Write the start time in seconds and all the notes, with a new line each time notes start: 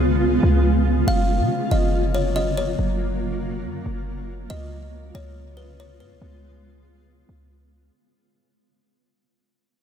Already playing: C#2 C#3 G#3 B3 F4
0.43 C#2
1.07 F#1 F#3 A#3 F5
1.40 C#3
1.71 F#1 D#5
2.15 C#5
2.36 D#5
2.57 C#5
2.79 F#1
3.65 F#2
3.86 F#1
4.50 C#2 G#3 B3 F4 D#5
5.15 C#2 C#5
5.57 B4
5.80 C#5
6.00 G#2 B4
6.11 C#2
6.22 C#2
7.29 C#2